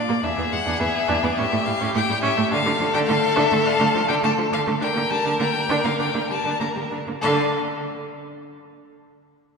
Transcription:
0.00 0.21 F4 medium
0.00 0.25 D5 loud
0.09 0.15 A#2 medium
0.09 0.15 A#3 medium
0.23 0.29 E2 loud
0.23 0.29 D4 medium
0.23 1.39 G#4 medium
0.23 0.54 E5 loud
0.37 0.43 E2 medium
0.37 0.43 B3 medium
0.52 0.58 E2 medium
0.52 0.58 G#3 medium
0.52 0.81 F#5 loud
0.65 0.72 E2 loud
0.65 0.72 D4 loud
0.80 0.87 E2 medium
0.80 0.86 B3 medium
0.80 1.26 E5 loud
1.08 1.15 E2 loud
1.08 1.14 D4 loud
1.23 1.29 E2 medium
1.23 1.29 B3 medium
1.23 1.39 D5 loud
1.37 1.44 A2 loud
1.37 1.43 C#4 loud
1.37 2.53 G4 medium
1.37 1.68 E5 loud
1.52 1.58 A2 medium
1.52 1.58 A3 medium
1.66 1.72 A2 medium
1.66 1.72 G3 medium
1.66 1.94 F5 loud
1.80 1.86 A2 loud
1.80 1.86 C#4 loud
1.94 2.01 A2 medium
1.94 2.00 A3 medium
1.94 2.23 G5 loud
2.09 2.15 A2 medium
2.09 2.15 G3 loud
2.22 2.29 A2 loud
2.22 2.28 C#4 loud
2.22 2.51 E5 loud
2.37 2.43 A2 medium
2.37 2.43 A3 medium
2.51 2.58 D3 loud
2.51 2.57 D4 loud
2.51 4.80 A4 loud
2.51 2.93 F5 loud
2.65 2.72 D3 medium
2.65 2.71 A3 medium
2.80 2.86 D3 medium
2.80 2.85 F3 medium
2.94 3.00 D3 loud
2.94 2.99 D4 loud
2.94 2.99 G5 loud
3.07 3.15 D3 medium
3.07 3.14 A3 medium
3.07 3.37 F5 loud
3.36 3.43 D3 loud
3.36 3.42 D4 loud
3.36 3.66 E5 loud
3.52 3.57 D3 medium
3.52 3.57 A3 medium
3.65 3.71 D3 loud
3.65 3.72 D4 loud
3.65 4.08 F5 loud
3.80 3.86 D3 medium
3.80 3.86 A3 medium
3.94 4.01 D3 medium
3.94 4.00 F3 loud
4.08 4.15 D3 loud
4.08 4.15 D4 loud
4.08 4.14 G5 loud
4.23 4.29 D3 medium
4.23 4.29 A3 loud
4.23 4.32 A5 loud
4.37 4.44 D3 medium
4.37 4.43 F3 medium
4.52 4.58 D3 loud
4.52 4.58 D4 loud
4.52 4.61 F5 loud
4.66 4.73 D3 medium
4.66 4.72 A3 loud
4.81 4.88 D3 loud
4.81 4.87 D4 loud
4.81 6.97 A#4 loud
4.81 5.12 G5 loud
4.95 5.03 D3 medium
4.95 5.01 A#3 medium
5.10 5.17 D3 medium
5.10 5.16 G3 medium
5.10 5.39 A5 loud
5.24 5.32 D3 loud
5.24 5.31 D4 loud
5.40 5.46 D3 medium
5.40 5.46 A#3 medium
5.40 5.86 G5 loud
5.69 5.75 D3 loud
5.69 5.76 D4 loud
5.84 5.91 D3 medium
5.84 5.90 A#3 medium
5.84 5.99 F5 loud
5.99 6.06 D3 loud
5.99 6.05 D4 loud
5.99 6.29 G5 loud
6.14 6.21 D3 medium
6.14 6.20 A#3 medium
6.30 6.36 D3 medium
6.30 6.36 G3 medium
6.30 6.60 A5 loud
6.44 6.51 D3 loud
6.44 6.51 D4 medium
6.60 6.67 D3 medium
6.60 6.67 A#3 medium
6.60 6.68 A#5 loud
6.75 6.83 D3 medium
6.75 6.82 G3 medium
6.91 6.98 D3 medium
6.91 6.98 D4 medium
7.07 7.14 D3 medium
7.07 7.14 A#3 medium
7.21 7.57 D3 loud
7.21 7.56 D4 medium
7.21 7.56 A4 loud
7.21 7.57 F5 loud

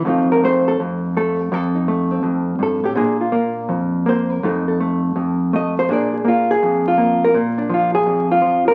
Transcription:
0.05 0.79 F2 medium
0.05 0.43 A3 medium
0.05 1.50 C4 soft
0.05 1.40 D#4 medium
0.05 0.31 F4 soft
0.32 0.43 A#4 medium
0.43 1.16 A3 medium
0.43 0.67 C5 loud
0.68 0.79 A4 medium
0.80 1.51 F2 medium
1.17 1.51 A3 medium
1.17 1.40 A4 medium
1.40 1.52 G4 medium
1.52 2.22 F2 medium
1.52 1.76 A4 medium
1.75 2.84 D#4 soft
1.88 2.96 A3 medium
2.11 2.96 C4 soft
2.23 2.58 F2 medium
2.59 2.83 G2 medium
2.59 2.85 A4 medium
2.84 2.97 A2 medium
2.84 2.97 G4 medium
2.95 3.69 A#2 medium
2.95 3.31 A#3 medium
2.95 4.41 D4 soft
2.95 3.20 G#4 medium
3.21 4.45 F4 soft
3.32 4.05 A#3 medium
3.69 4.42 F2 medium
4.06 4.41 A#3 medium
4.06 4.32 C5 medium
4.32 4.46 A#4 medium
4.43 5.14 F2 medium
4.43 4.79 A3 soft
4.43 5.88 D#4 medium
4.43 4.67 A4 medium
4.43 4.68 C5 medium
4.68 5.88 A4 soft
4.80 5.52 A3 medium
5.16 5.89 F2 medium
5.53 5.88 A3 medium
5.53 5.78 D#5 medium
5.79 5.90 C5 medium
5.89 6.62 A#2 medium
5.89 6.24 A#3 medium
5.89 7.34 D4 medium
5.89 6.14 G#4 medium
5.89 6.14 D5 medium
6.14 6.50 G#4 soft
6.25 6.96 A#3 medium
6.25 6.50 F4 medium
6.51 6.86 G#4 loud
6.63 7.35 F2 medium
6.88 7.23 F4 medium
6.98 7.33 A#3 medium
7.24 7.36 A#4 loud
7.34 8.07 A#2 medium
7.58 8.74 D4 soft
7.69 8.40 F3 medium
7.74 7.94 F4 medium
7.95 8.31 G#4 loud
8.06 8.74 F2 medium
8.31 8.67 F4 medium
8.42 8.74 F3 medium
8.68 8.74 A#4 loud

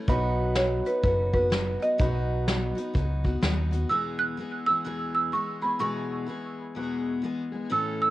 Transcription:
0.08 0.80 B1 medium
0.08 0.86 B2 loud
0.08 0.86 F#3 medium
0.08 0.88 B3 loud
0.08 1.96 D#4 medium
0.08 0.86 D#4 medium
0.08 1.96 F#4 medium
0.08 0.84 F#4 loud
0.08 1.96 B4 medium
0.08 kick loud
0.08 closed hi-hat medium
0.55 0.87 C#5 loud
0.55 snare loud
0.55 closed hi-hat medium
0.85 1.04 B3 soft
0.85 1.04 D#4 medium
0.85 1.04 F#4 medium
0.85 1.03 B4 medium
0.85 closed hi-hat medium
1.03 1.75 F#1 medium
1.03 1.33 F#3 medium
1.03 1.34 B3 medium
1.03 1.33 D#4 medium
1.03 1.32 F#4 medium
1.03 1.32 B4 medium
1.03 kick loud
1.03 closed hi-hat medium
1.33 1.50 B3 medium
1.33 1.51 D#4 medium
1.33 1.51 F#4 medium
1.33 1.78 B4 loud
1.33 kick medium
1.50 1.81 F#3 medium
1.50 1.81 B3 medium
1.50 1.81 D#4 medium
1.50 1.78 F#4 medium
1.50 snare medium
1.50 closed hi-hat medium
1.80 1.98 B3 soft
1.80 1.98 D#4 soft
1.80 1.99 F#4 soft
1.80 3.69 D#5 medium
1.80 closed hi-hat medium
1.98 2.71 B1 medium
1.98 2.76 B2 medium
1.98 2.77 F#3 medium
1.98 2.77 B3 medium
1.98 2.75 D#4 loud
1.98 3.87 D#4 medium
1.98 2.74 F#4 medium
1.98 3.87 F#4 medium
1.98 3.87 B4 medium
1.98 kick loud
1.98 closed hi-hat medium
2.48 snare loud
2.48 closed hi-hat medium
2.75 2.93 B3 medium
2.75 2.94 D#4 medium
2.75 2.94 F#4 medium
2.75 closed hi-hat medium
2.93 3.35 C#2 medium
2.93 3.24 F#3 medium
2.93 3.25 B3 medium
2.93 3.25 D#4 medium
2.93 3.23 F#4 medium
2.93 kick medium
2.93 closed hi-hat medium
3.24 3.42 B3 medium
3.24 3.42 D#4 medium
3.24 3.42 F#4 medium
3.24 kick medium
3.41 3.83 D#2 medium
3.41 3.72 F#3 medium
3.41 3.73 B3 medium
3.41 3.71 D#4 medium
3.41 3.70 F#4 medium
3.41 snare loud
3.41 closed hi-hat medium
3.71 3.90 B3 soft
3.71 3.90 D#4 soft
3.71 3.90 F#4 medium
3.71 closed hi-hat medium
3.89 4.37 E2 medium
3.89 4.38 B2 medium
3.89 4.37 E3 medium
3.89 4.37 G#3 medium
3.89 4.38 B3 loud
3.89 4.39 G#4 loud
3.89 4.18 E6 loud
4.19 4.69 F#6 loud
4.37 4.67 E3 medium
4.37 4.68 G#3 medium
4.37 4.67 B3 medium
4.37 4.66 G#4 medium
4.66 4.84 E3 soft
4.66 4.85 G#3 soft
4.66 4.85 B3 soft
4.66 4.85 G#4 medium
4.66 5.11 E6 loud
4.84 5.33 E2 medium
4.84 5.33 B2 medium
4.84 5.32 E3 medium
4.84 5.32 G#3 medium
4.84 5.34 B3 medium
4.84 5.34 G#4 medium
5.15 5.32 E6 loud
5.32 5.62 E3 medium
5.32 5.63 G#3 medium
5.32 5.62 B3 medium
5.32 5.60 G#4 medium
5.32 5.61 C#6 medium
5.62 5.79 E3 soft
5.62 5.79 G#3 soft
5.62 5.80 B3 soft
5.62 5.80 G#4 medium
5.62 5.81 B5 medium
5.79 6.28 E2 medium
5.79 6.28 B2 medium
5.79 6.26 E3 loud
5.79 6.27 G#3 loud
5.79 6.28 B3 loud
5.79 6.29 G#4 medium
5.79 6.72 C#6 medium
6.27 6.76 E3 medium
6.27 6.76 G#3 medium
6.27 6.76 B3 medium
6.27 6.76 G#4 medium
6.75 7.23 E2 medium
6.75 7.24 B2 loud
6.75 7.21 E3 loud
6.75 7.22 G#3 medium
6.75 7.24 B3 loud
6.75 7.24 G#4 medium
7.22 7.53 E3 medium
7.22 7.53 G#3 medium
7.22 7.52 B3 medium
7.22 7.51 G#4 medium
7.52 7.69 E3 soft
7.52 7.71 G#3 medium
7.52 7.71 B3 medium
7.52 7.71 G#4 medium
7.70 8.10 A2 loud
7.70 8.10 E3 loud
7.70 8.10 A3 medium
7.70 8.10 C#4 medium
7.70 8.10 A4 loud
7.70 8.00 E6 medium
8.02 8.10 E6 loud

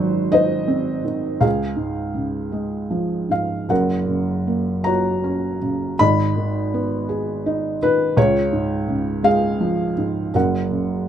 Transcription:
0.00 1.38 G#1 medium
0.00 1.38 G#2 medium
0.00 1.02 D#3 medium
0.00 1.38 F#3 medium
0.00 0.31 F#4 medium
0.00 0.32 C5 medium
0.32 1.38 D#4 medium
0.32 1.38 C5 medium
0.32 1.45 D#5 medium
0.68 1.39 C4 medium
1.05 1.40 D#3 soft
1.40 3.65 C#2 medium
1.40 3.27 G#4 medium
1.40 3.30 F5 medium
1.76 3.26 G#2 soft
2.15 3.66 C#3 soft
2.52 3.66 G#3 soft
2.90 3.67 F3 soft
3.29 3.68 G#2 soft
3.29 3.72 F5 medium
3.69 5.94 F#1 medium
3.69 5.94 F#2 medium
3.69 4.83 A#4 medium
3.69 4.90 F#5 medium
4.07 5.57 C#3 soft
4.47 5.95 A#3 soft
4.84 5.96 F#4 soft
4.84 5.95 C#5 medium
4.84 6.01 A#5 medium
5.24 5.97 C#4 medium
5.62 5.98 C#3 medium
5.99 8.13 G#1 medium
5.99 8.13 G#2 medium
5.99 7.78 D#5 medium
5.99 7.77 B5 loud
6.36 7.77 D#3 soft
6.74 8.13 B3 medium
7.09 8.13 G#4 medium
7.46 8.15 D#4 medium
7.82 8.16 D#3 medium
7.82 8.18 B4 loud
8.17 10.30 C#2 medium
8.17 9.21 F4 medium
8.17 9.28 C#5 loud
8.52 9.94 G#2 medium
8.88 10.31 C#3 medium
9.23 10.30 G#3 medium
9.23 10.30 G#4 medium
9.23 10.38 F5 medium
9.61 10.32 F3 medium
9.98 10.33 G#2 soft
10.34 11.08 F#1 medium
10.34 11.08 F#2 medium
10.34 11.08 A#4 medium
10.34 11.08 F#5 medium
10.71 11.08 C#3 soft

